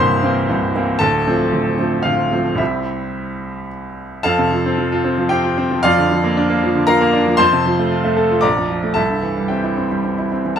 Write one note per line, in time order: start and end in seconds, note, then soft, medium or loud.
0.00 0.50 C1 medium
0.00 0.50 C2 medium
0.00 0.23 E3 medium
0.00 0.24 A#3 medium
0.00 0.24 C4 medium
0.00 1.02 A#4 medium
0.00 0.70 C5 medium
0.00 1.02 A#5 loud
0.00 0.73 C6 loud
0.23 0.46 E3 medium
0.23 0.46 A#3 medium
0.23 0.46 C4 medium
0.50 0.74 C1 medium
0.50 0.74 C2 medium
0.75 0.98 E3 medium
0.75 0.99 A#3 medium
0.75 0.99 C4 medium
0.99 1.26 D1 medium
0.99 1.26 D2 medium
0.99 2.01 A4 medium
0.99 2.04 A5 loud
1.27 1.50 F3 medium
1.27 1.50 A3 medium
1.27 1.50 C4 medium
1.52 1.78 D1 medium
1.52 1.78 D2 medium
1.78 2.02 F3 medium
1.78 2.03 A3 medium
1.78 2.03 C4 medium
2.03 2.31 D1 medium
2.03 2.31 D2 medium
2.03 2.55 F4 medium
2.03 2.58 F5 medium
2.32 2.57 F3 medium
2.32 2.57 A3 medium
2.32 2.56 C4 medium
2.55 4.19 C2 medium
2.55 4.20 G3 soft
2.55 4.21 C4 medium
2.55 3.70 E5 medium
2.59 3.66 E4 medium
4.23 5.80 F2 medium
4.23 5.27 A4 medium
4.23 5.27 F5 medium
4.23 5.30 A5 loud
4.39 4.60 C3 medium
4.52 4.73 F3 medium
4.66 4.87 C4 medium
4.78 4.99 F3 medium
4.92 5.13 F4 medium
5.04 5.26 C4 medium
5.18 5.39 F3 medium
5.29 5.52 C4 medium
5.29 5.80 G4 medium
5.29 5.83 G5 loud
5.44 5.65 F4 medium
5.58 5.79 C4 medium
5.71 5.84 F3 medium
5.83 7.35 F2 medium
5.83 6.84 F4 medium
5.83 6.84 D5 medium
5.83 6.86 F5 loud
5.98 6.19 D3 medium
6.11 6.32 F3 medium
6.24 6.45 A#3 medium
6.37 6.57 D4 medium
6.50 6.70 A#3 medium
6.64 6.83 F3 medium
6.75 6.96 D3 medium
6.87 7.08 F3 medium
6.87 7.35 A#4 medium
6.87 7.35 F5 medium
6.87 7.38 A#5 loud
7.01 7.21 A#3 medium
7.13 7.34 D4 medium
7.26 7.39 F3 medium
7.37 8.40 F2 medium
7.37 8.38 C5 medium
7.37 8.39 A5 medium
7.37 8.42 C6 loud
7.53 7.73 C3 medium
7.66 7.86 F3 medium
7.79 7.99 A3 medium
7.91 8.12 F4 medium
8.04 8.25 A3 medium
8.17 8.38 A4 medium
8.30 8.43 F4 medium
8.41 8.95 A#1 medium
8.41 8.92 D5 medium
8.41 8.92 A#5 medium
8.41 8.95 D6 loud
8.57 8.78 F2 medium
8.70 8.91 F3 medium
8.83 8.97 A3 medium
8.94 10.54 C2 medium
8.94 9.46 A4 medium
8.94 9.46 E5 medium
8.94 9.49 A5 medium
9.10 9.31 G2 soft
9.23 9.45 E3 medium
9.37 9.59 G3 soft
9.48 9.72 C4 medium
9.48 10.27 G4 soft
9.48 10.27 E5 soft
9.48 10.30 G5 medium
9.64 9.85 E4 medium
9.77 9.99 C4 medium
9.92 10.13 G3 medium
10.04 10.26 C4 medium
10.18 10.39 E4 medium
10.32 10.53 C4 medium
10.45 10.58 E3 soft
10.56 10.59 A5 medium